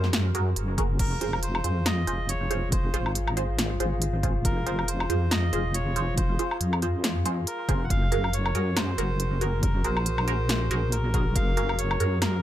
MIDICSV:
0, 0, Header, 1, 6, 480
1, 0, Start_track
1, 0, Tempo, 431655
1, 1108, Time_signature, 4, 2, 24, 8
1, 13811, End_track
2, 0, Start_track
2, 0, Title_t, "Melodica"
2, 0, Program_c, 0, 22
2, 1108, Note_on_c, 0, 70, 96
2, 1554, Note_off_c, 0, 70, 0
2, 1589, Note_on_c, 0, 72, 99
2, 2070, Note_on_c, 0, 75, 111
2, 2083, Note_off_c, 0, 72, 0
2, 2548, Note_on_c, 0, 73, 104
2, 2563, Note_off_c, 0, 75, 0
2, 2994, Note_off_c, 0, 73, 0
2, 3027, Note_on_c, 0, 72, 94
2, 3474, Note_off_c, 0, 72, 0
2, 4947, Note_on_c, 0, 70, 99
2, 5428, Note_on_c, 0, 72, 101
2, 5441, Note_off_c, 0, 70, 0
2, 5907, Note_on_c, 0, 75, 114
2, 5922, Note_off_c, 0, 72, 0
2, 6387, Note_on_c, 0, 73, 108
2, 6402, Note_off_c, 0, 75, 0
2, 6833, Note_off_c, 0, 73, 0
2, 6866, Note_on_c, 0, 72, 94
2, 7313, Note_off_c, 0, 72, 0
2, 8310, Note_on_c, 0, 70, 98
2, 8719, Note_on_c, 0, 78, 87
2, 8734, Note_off_c, 0, 70, 0
2, 8787, Note_off_c, 0, 78, 0
2, 8790, Note_on_c, 0, 77, 118
2, 9270, Note_on_c, 0, 73, 104
2, 9283, Note_off_c, 0, 77, 0
2, 9750, Note_on_c, 0, 72, 106
2, 9763, Note_off_c, 0, 73, 0
2, 10468, Note_on_c, 0, 70, 94
2, 10490, Note_off_c, 0, 72, 0
2, 10691, Note_off_c, 0, 70, 0
2, 10709, Note_on_c, 0, 70, 100
2, 10949, Note_on_c, 0, 72, 114
2, 10955, Note_off_c, 0, 70, 0
2, 12148, Note_on_c, 0, 70, 98
2, 12184, Note_off_c, 0, 72, 0
2, 12630, Note_on_c, 0, 77, 113
2, 12642, Note_off_c, 0, 70, 0
2, 13107, Note_on_c, 0, 73, 100
2, 13123, Note_off_c, 0, 77, 0
2, 13554, Note_off_c, 0, 73, 0
2, 13588, Note_on_c, 0, 70, 98
2, 13811, Note_off_c, 0, 70, 0
2, 13811, End_track
3, 0, Start_track
3, 0, Title_t, "Analog synth pad"
3, 0, Program_c, 1, 89
3, 0, Note_on_c, 1, 66, 89
3, 0, Note_on_c, 1, 68, 80
3, 0, Note_on_c, 1, 70, 97
3, 1063, Note_off_c, 1, 66, 0
3, 1063, Note_off_c, 1, 68, 0
3, 1063, Note_off_c, 1, 70, 0
3, 1107, Note_on_c, 1, 65, 85
3, 1107, Note_on_c, 1, 77, 97
3, 1108, Note_on_c, 1, 68, 78
3, 8743, Note_off_c, 1, 65, 0
3, 8743, Note_off_c, 1, 68, 0
3, 8743, Note_off_c, 1, 77, 0
3, 8787, Note_on_c, 1, 68, 82
3, 8788, Note_on_c, 1, 66, 88
3, 8788, Note_on_c, 1, 70, 97
3, 13811, Note_off_c, 1, 66, 0
3, 13811, Note_off_c, 1, 68, 0
3, 13811, Note_off_c, 1, 70, 0
3, 13811, End_track
4, 0, Start_track
4, 0, Title_t, "Synth stab"
4, 0, Program_c, 2, 62
4, 386, Note_on_c, 2, 66, 99
4, 386, Note_on_c, 2, 68, 88
4, 386, Note_on_c, 2, 70, 107
4, 515, Note_off_c, 2, 66, 0
4, 515, Note_off_c, 2, 68, 0
4, 515, Note_off_c, 2, 70, 0
4, 866, Note_on_c, 2, 66, 82
4, 866, Note_on_c, 2, 68, 76
4, 866, Note_on_c, 2, 70, 91
4, 995, Note_off_c, 2, 66, 0
4, 995, Note_off_c, 2, 68, 0
4, 995, Note_off_c, 2, 70, 0
4, 1345, Note_on_c, 2, 65, 94
4, 1345, Note_on_c, 2, 72, 104
4, 1346, Note_on_c, 2, 68, 87
4, 1474, Note_off_c, 2, 65, 0
4, 1474, Note_off_c, 2, 68, 0
4, 1474, Note_off_c, 2, 72, 0
4, 1826, Note_on_c, 2, 65, 88
4, 1826, Note_on_c, 2, 68, 80
4, 1826, Note_on_c, 2, 72, 97
4, 1955, Note_off_c, 2, 65, 0
4, 1955, Note_off_c, 2, 68, 0
4, 1955, Note_off_c, 2, 72, 0
4, 2306, Note_on_c, 2, 65, 89
4, 2306, Note_on_c, 2, 68, 83
4, 2306, Note_on_c, 2, 72, 103
4, 2434, Note_off_c, 2, 68, 0
4, 2435, Note_off_c, 2, 65, 0
4, 2435, Note_off_c, 2, 72, 0
4, 2787, Note_on_c, 2, 65, 91
4, 2787, Note_on_c, 2, 68, 83
4, 2787, Note_on_c, 2, 72, 98
4, 2976, Note_off_c, 2, 65, 0
4, 2976, Note_off_c, 2, 68, 0
4, 2976, Note_off_c, 2, 72, 0
4, 3266, Note_on_c, 2, 65, 98
4, 3266, Note_on_c, 2, 68, 85
4, 3266, Note_on_c, 2, 72, 107
4, 3395, Note_off_c, 2, 65, 0
4, 3395, Note_off_c, 2, 68, 0
4, 3395, Note_off_c, 2, 72, 0
4, 3747, Note_on_c, 2, 65, 90
4, 3747, Note_on_c, 2, 68, 81
4, 3747, Note_on_c, 2, 72, 99
4, 3875, Note_off_c, 2, 65, 0
4, 3875, Note_off_c, 2, 68, 0
4, 3875, Note_off_c, 2, 72, 0
4, 4227, Note_on_c, 2, 65, 93
4, 4227, Note_on_c, 2, 68, 86
4, 4227, Note_on_c, 2, 72, 104
4, 4355, Note_off_c, 2, 65, 0
4, 4355, Note_off_c, 2, 68, 0
4, 4355, Note_off_c, 2, 72, 0
4, 4707, Note_on_c, 2, 68, 81
4, 4707, Note_on_c, 2, 72, 100
4, 4708, Note_on_c, 2, 65, 90
4, 4896, Note_off_c, 2, 65, 0
4, 4896, Note_off_c, 2, 68, 0
4, 4896, Note_off_c, 2, 72, 0
4, 5187, Note_on_c, 2, 68, 87
4, 5187, Note_on_c, 2, 72, 104
4, 5188, Note_on_c, 2, 65, 94
4, 5315, Note_off_c, 2, 65, 0
4, 5315, Note_off_c, 2, 68, 0
4, 5315, Note_off_c, 2, 72, 0
4, 5667, Note_on_c, 2, 68, 79
4, 5668, Note_on_c, 2, 65, 88
4, 5668, Note_on_c, 2, 72, 97
4, 5795, Note_off_c, 2, 65, 0
4, 5795, Note_off_c, 2, 68, 0
4, 5795, Note_off_c, 2, 72, 0
4, 6147, Note_on_c, 2, 65, 90
4, 6147, Note_on_c, 2, 68, 85
4, 6147, Note_on_c, 2, 72, 102
4, 6275, Note_off_c, 2, 65, 0
4, 6275, Note_off_c, 2, 68, 0
4, 6275, Note_off_c, 2, 72, 0
4, 6627, Note_on_c, 2, 65, 90
4, 6628, Note_on_c, 2, 68, 83
4, 6628, Note_on_c, 2, 72, 101
4, 6816, Note_off_c, 2, 65, 0
4, 6816, Note_off_c, 2, 68, 0
4, 6816, Note_off_c, 2, 72, 0
4, 7108, Note_on_c, 2, 65, 94
4, 7108, Note_on_c, 2, 68, 86
4, 7108, Note_on_c, 2, 72, 104
4, 7236, Note_off_c, 2, 65, 0
4, 7236, Note_off_c, 2, 68, 0
4, 7236, Note_off_c, 2, 72, 0
4, 7589, Note_on_c, 2, 65, 88
4, 7589, Note_on_c, 2, 68, 82
4, 7589, Note_on_c, 2, 72, 97
4, 7716, Note_off_c, 2, 65, 0
4, 7716, Note_off_c, 2, 68, 0
4, 7716, Note_off_c, 2, 72, 0
4, 8068, Note_on_c, 2, 65, 91
4, 8068, Note_on_c, 2, 68, 84
4, 8068, Note_on_c, 2, 72, 100
4, 8196, Note_off_c, 2, 65, 0
4, 8196, Note_off_c, 2, 68, 0
4, 8196, Note_off_c, 2, 72, 0
4, 8548, Note_on_c, 2, 65, 87
4, 8548, Note_on_c, 2, 68, 82
4, 8548, Note_on_c, 2, 72, 100
4, 8736, Note_off_c, 2, 68, 0
4, 8736, Note_off_c, 2, 72, 0
4, 8737, Note_off_c, 2, 65, 0
4, 9027, Note_on_c, 2, 66, 96
4, 9027, Note_on_c, 2, 68, 86
4, 9027, Note_on_c, 2, 70, 104
4, 9155, Note_off_c, 2, 66, 0
4, 9155, Note_off_c, 2, 68, 0
4, 9155, Note_off_c, 2, 70, 0
4, 9507, Note_on_c, 2, 66, 85
4, 9507, Note_on_c, 2, 68, 79
4, 9507, Note_on_c, 2, 70, 98
4, 9635, Note_off_c, 2, 66, 0
4, 9635, Note_off_c, 2, 68, 0
4, 9635, Note_off_c, 2, 70, 0
4, 9987, Note_on_c, 2, 66, 92
4, 9987, Note_on_c, 2, 68, 85
4, 9987, Note_on_c, 2, 70, 104
4, 10115, Note_off_c, 2, 66, 0
4, 10115, Note_off_c, 2, 68, 0
4, 10115, Note_off_c, 2, 70, 0
4, 10467, Note_on_c, 2, 66, 89
4, 10467, Note_on_c, 2, 68, 81
4, 10467, Note_on_c, 2, 70, 98
4, 10656, Note_off_c, 2, 66, 0
4, 10656, Note_off_c, 2, 68, 0
4, 10656, Note_off_c, 2, 70, 0
4, 10947, Note_on_c, 2, 66, 95
4, 10948, Note_on_c, 2, 68, 88
4, 10948, Note_on_c, 2, 70, 107
4, 11075, Note_off_c, 2, 66, 0
4, 11075, Note_off_c, 2, 68, 0
4, 11075, Note_off_c, 2, 70, 0
4, 11427, Note_on_c, 2, 66, 87
4, 11427, Note_on_c, 2, 68, 80
4, 11427, Note_on_c, 2, 70, 98
4, 11555, Note_off_c, 2, 66, 0
4, 11555, Note_off_c, 2, 68, 0
4, 11555, Note_off_c, 2, 70, 0
4, 11907, Note_on_c, 2, 70, 104
4, 11908, Note_on_c, 2, 66, 94
4, 11908, Note_on_c, 2, 68, 84
4, 12035, Note_off_c, 2, 68, 0
4, 12035, Note_off_c, 2, 70, 0
4, 12036, Note_off_c, 2, 66, 0
4, 12388, Note_on_c, 2, 66, 92
4, 12388, Note_on_c, 2, 70, 101
4, 12389, Note_on_c, 2, 68, 84
4, 12576, Note_off_c, 2, 66, 0
4, 12576, Note_off_c, 2, 70, 0
4, 12577, Note_off_c, 2, 68, 0
4, 12867, Note_on_c, 2, 70, 109
4, 12868, Note_on_c, 2, 66, 97
4, 12868, Note_on_c, 2, 68, 86
4, 12995, Note_off_c, 2, 66, 0
4, 12995, Note_off_c, 2, 68, 0
4, 12995, Note_off_c, 2, 70, 0
4, 13348, Note_on_c, 2, 66, 89
4, 13348, Note_on_c, 2, 68, 81
4, 13348, Note_on_c, 2, 70, 98
4, 13476, Note_off_c, 2, 66, 0
4, 13476, Note_off_c, 2, 68, 0
4, 13476, Note_off_c, 2, 70, 0
4, 13811, End_track
5, 0, Start_track
5, 0, Title_t, "Wobble bass"
5, 0, Program_c, 3, 39
5, 0, Note_on_c, 3, 42, 96
5, 611, Note_off_c, 3, 42, 0
5, 627, Note_on_c, 3, 30, 98
5, 1091, Note_off_c, 3, 30, 0
5, 1107, Note_on_c, 3, 29, 101
5, 1811, Note_off_c, 3, 29, 0
5, 1827, Note_on_c, 3, 41, 97
5, 2290, Note_off_c, 3, 41, 0
5, 2308, Note_on_c, 3, 29, 101
5, 3251, Note_off_c, 3, 29, 0
5, 3268, Note_on_c, 3, 32, 98
5, 4211, Note_off_c, 3, 32, 0
5, 4227, Note_on_c, 3, 32, 97
5, 4931, Note_off_c, 3, 32, 0
5, 4948, Note_on_c, 3, 29, 101
5, 5651, Note_off_c, 3, 29, 0
5, 5668, Note_on_c, 3, 41, 99
5, 6131, Note_off_c, 3, 41, 0
5, 6148, Note_on_c, 3, 29, 100
5, 7091, Note_off_c, 3, 29, 0
5, 7348, Note_on_c, 3, 41, 99
5, 8291, Note_off_c, 3, 41, 0
5, 8548, Note_on_c, 3, 29, 102
5, 8771, Note_off_c, 3, 29, 0
5, 8788, Note_on_c, 3, 30, 102
5, 9491, Note_off_c, 3, 30, 0
5, 9509, Note_on_c, 3, 42, 99
5, 9971, Note_off_c, 3, 42, 0
5, 9987, Note_on_c, 3, 30, 98
5, 10931, Note_off_c, 3, 30, 0
5, 10947, Note_on_c, 3, 34, 97
5, 11890, Note_off_c, 3, 34, 0
5, 11906, Note_on_c, 3, 34, 95
5, 12610, Note_off_c, 3, 34, 0
5, 12628, Note_on_c, 3, 30, 100
5, 13331, Note_off_c, 3, 30, 0
5, 13348, Note_on_c, 3, 42, 98
5, 13811, Note_off_c, 3, 42, 0
5, 13811, End_track
6, 0, Start_track
6, 0, Title_t, "Drums"
6, 42, Note_on_c, 9, 38, 36
6, 146, Note_off_c, 9, 38, 0
6, 146, Note_on_c, 9, 38, 120
6, 146, Note_on_c, 9, 42, 85
6, 257, Note_off_c, 9, 38, 0
6, 257, Note_off_c, 9, 42, 0
6, 387, Note_on_c, 9, 42, 54
6, 498, Note_off_c, 9, 42, 0
6, 627, Note_on_c, 9, 42, 79
6, 738, Note_off_c, 9, 42, 0
6, 867, Note_on_c, 9, 36, 100
6, 867, Note_on_c, 9, 42, 54
6, 978, Note_off_c, 9, 36, 0
6, 978, Note_off_c, 9, 42, 0
6, 1105, Note_on_c, 9, 42, 82
6, 1105, Note_on_c, 9, 49, 76
6, 1107, Note_on_c, 9, 36, 122
6, 1217, Note_off_c, 9, 42, 0
6, 1217, Note_off_c, 9, 49, 0
6, 1218, Note_off_c, 9, 36, 0
6, 1347, Note_on_c, 9, 42, 56
6, 1458, Note_off_c, 9, 42, 0
6, 1482, Note_on_c, 9, 77, 61
6, 1586, Note_on_c, 9, 42, 84
6, 1593, Note_off_c, 9, 77, 0
6, 1698, Note_off_c, 9, 42, 0
6, 1722, Note_on_c, 9, 77, 81
6, 1826, Note_on_c, 9, 42, 57
6, 1833, Note_off_c, 9, 77, 0
6, 1937, Note_off_c, 9, 42, 0
6, 2067, Note_on_c, 9, 38, 122
6, 2067, Note_on_c, 9, 42, 84
6, 2067, Note_on_c, 9, 77, 53
6, 2178, Note_off_c, 9, 38, 0
6, 2178, Note_off_c, 9, 42, 0
6, 2178, Note_off_c, 9, 77, 0
6, 2307, Note_on_c, 9, 42, 57
6, 2418, Note_off_c, 9, 42, 0
6, 2546, Note_on_c, 9, 42, 84
6, 2658, Note_off_c, 9, 42, 0
6, 2787, Note_on_c, 9, 42, 54
6, 2898, Note_off_c, 9, 42, 0
6, 3026, Note_on_c, 9, 42, 83
6, 3027, Note_on_c, 9, 36, 127
6, 3138, Note_off_c, 9, 36, 0
6, 3138, Note_off_c, 9, 42, 0
6, 3267, Note_on_c, 9, 42, 56
6, 3378, Note_off_c, 9, 42, 0
6, 3402, Note_on_c, 9, 77, 61
6, 3507, Note_on_c, 9, 42, 87
6, 3513, Note_off_c, 9, 77, 0
6, 3618, Note_off_c, 9, 42, 0
6, 3642, Note_on_c, 9, 77, 79
6, 3747, Note_on_c, 9, 42, 57
6, 3753, Note_off_c, 9, 77, 0
6, 3858, Note_off_c, 9, 42, 0
6, 3987, Note_on_c, 9, 38, 127
6, 3987, Note_on_c, 9, 42, 88
6, 4098, Note_off_c, 9, 38, 0
6, 4098, Note_off_c, 9, 42, 0
6, 4227, Note_on_c, 9, 42, 58
6, 4338, Note_off_c, 9, 42, 0
6, 4466, Note_on_c, 9, 42, 86
6, 4578, Note_off_c, 9, 42, 0
6, 4708, Note_on_c, 9, 36, 107
6, 4708, Note_on_c, 9, 42, 57
6, 4819, Note_off_c, 9, 36, 0
6, 4819, Note_off_c, 9, 42, 0
6, 4947, Note_on_c, 9, 42, 80
6, 4948, Note_on_c, 9, 36, 127
6, 5058, Note_off_c, 9, 42, 0
6, 5059, Note_off_c, 9, 36, 0
6, 5188, Note_on_c, 9, 42, 57
6, 5299, Note_off_c, 9, 42, 0
6, 5324, Note_on_c, 9, 77, 58
6, 5428, Note_on_c, 9, 42, 84
6, 5435, Note_off_c, 9, 77, 0
6, 5540, Note_off_c, 9, 42, 0
6, 5564, Note_on_c, 9, 77, 78
6, 5669, Note_on_c, 9, 42, 55
6, 5675, Note_off_c, 9, 77, 0
6, 5780, Note_off_c, 9, 42, 0
6, 5908, Note_on_c, 9, 38, 125
6, 5908, Note_on_c, 9, 42, 82
6, 5908, Note_on_c, 9, 77, 51
6, 6020, Note_off_c, 9, 38, 0
6, 6020, Note_off_c, 9, 42, 0
6, 6020, Note_off_c, 9, 77, 0
6, 6148, Note_on_c, 9, 42, 56
6, 6259, Note_off_c, 9, 42, 0
6, 6388, Note_on_c, 9, 42, 82
6, 6499, Note_off_c, 9, 42, 0
6, 6628, Note_on_c, 9, 42, 55
6, 6739, Note_off_c, 9, 42, 0
6, 6867, Note_on_c, 9, 42, 80
6, 6868, Note_on_c, 9, 36, 127
6, 6978, Note_off_c, 9, 42, 0
6, 6979, Note_off_c, 9, 36, 0
6, 7108, Note_on_c, 9, 42, 52
6, 7219, Note_off_c, 9, 42, 0
6, 7243, Note_on_c, 9, 77, 61
6, 7347, Note_on_c, 9, 42, 79
6, 7354, Note_off_c, 9, 77, 0
6, 7458, Note_off_c, 9, 42, 0
6, 7483, Note_on_c, 9, 77, 78
6, 7587, Note_on_c, 9, 42, 52
6, 7594, Note_off_c, 9, 77, 0
6, 7698, Note_off_c, 9, 42, 0
6, 7827, Note_on_c, 9, 38, 127
6, 7827, Note_on_c, 9, 42, 82
6, 7939, Note_off_c, 9, 38, 0
6, 7939, Note_off_c, 9, 42, 0
6, 8068, Note_on_c, 9, 42, 52
6, 8179, Note_off_c, 9, 42, 0
6, 8308, Note_on_c, 9, 42, 81
6, 8419, Note_off_c, 9, 42, 0
6, 8548, Note_on_c, 9, 36, 109
6, 8548, Note_on_c, 9, 42, 51
6, 8659, Note_off_c, 9, 36, 0
6, 8659, Note_off_c, 9, 42, 0
6, 8788, Note_on_c, 9, 36, 121
6, 8788, Note_on_c, 9, 42, 76
6, 8899, Note_off_c, 9, 36, 0
6, 8900, Note_off_c, 9, 42, 0
6, 9028, Note_on_c, 9, 42, 50
6, 9139, Note_off_c, 9, 42, 0
6, 9164, Note_on_c, 9, 77, 63
6, 9268, Note_on_c, 9, 42, 78
6, 9275, Note_off_c, 9, 77, 0
6, 9379, Note_off_c, 9, 42, 0
6, 9403, Note_on_c, 9, 77, 80
6, 9507, Note_on_c, 9, 42, 51
6, 9514, Note_off_c, 9, 77, 0
6, 9618, Note_off_c, 9, 42, 0
6, 9747, Note_on_c, 9, 38, 122
6, 9747, Note_on_c, 9, 42, 79
6, 9747, Note_on_c, 9, 77, 56
6, 9859, Note_off_c, 9, 38, 0
6, 9859, Note_off_c, 9, 42, 0
6, 9859, Note_off_c, 9, 77, 0
6, 9988, Note_on_c, 9, 42, 54
6, 10099, Note_off_c, 9, 42, 0
6, 10228, Note_on_c, 9, 42, 78
6, 10339, Note_off_c, 9, 42, 0
6, 10467, Note_on_c, 9, 42, 51
6, 10578, Note_off_c, 9, 42, 0
6, 10707, Note_on_c, 9, 36, 120
6, 10707, Note_on_c, 9, 42, 75
6, 10818, Note_off_c, 9, 36, 0
6, 10818, Note_off_c, 9, 42, 0
6, 10947, Note_on_c, 9, 42, 51
6, 11058, Note_off_c, 9, 42, 0
6, 11083, Note_on_c, 9, 77, 67
6, 11187, Note_on_c, 9, 42, 76
6, 11194, Note_off_c, 9, 77, 0
6, 11298, Note_off_c, 9, 42, 0
6, 11322, Note_on_c, 9, 77, 83
6, 11427, Note_on_c, 9, 42, 49
6, 11433, Note_off_c, 9, 77, 0
6, 11538, Note_off_c, 9, 42, 0
6, 11668, Note_on_c, 9, 38, 120
6, 11668, Note_on_c, 9, 42, 77
6, 11779, Note_off_c, 9, 38, 0
6, 11779, Note_off_c, 9, 42, 0
6, 11907, Note_on_c, 9, 42, 53
6, 12018, Note_off_c, 9, 42, 0
6, 12147, Note_on_c, 9, 42, 78
6, 12258, Note_off_c, 9, 42, 0
6, 12386, Note_on_c, 9, 42, 51
6, 12388, Note_on_c, 9, 36, 101
6, 12498, Note_off_c, 9, 42, 0
6, 12499, Note_off_c, 9, 36, 0
6, 12627, Note_on_c, 9, 42, 77
6, 12628, Note_on_c, 9, 36, 120
6, 12739, Note_off_c, 9, 36, 0
6, 12739, Note_off_c, 9, 42, 0
6, 12867, Note_on_c, 9, 42, 52
6, 12978, Note_off_c, 9, 42, 0
6, 13003, Note_on_c, 9, 77, 68
6, 13107, Note_on_c, 9, 42, 79
6, 13114, Note_off_c, 9, 77, 0
6, 13218, Note_off_c, 9, 42, 0
6, 13242, Note_on_c, 9, 77, 88
6, 13346, Note_on_c, 9, 42, 52
6, 13353, Note_off_c, 9, 77, 0
6, 13457, Note_off_c, 9, 42, 0
6, 13587, Note_on_c, 9, 38, 118
6, 13587, Note_on_c, 9, 42, 81
6, 13587, Note_on_c, 9, 77, 58
6, 13698, Note_off_c, 9, 38, 0
6, 13698, Note_off_c, 9, 42, 0
6, 13698, Note_off_c, 9, 77, 0
6, 13811, End_track
0, 0, End_of_file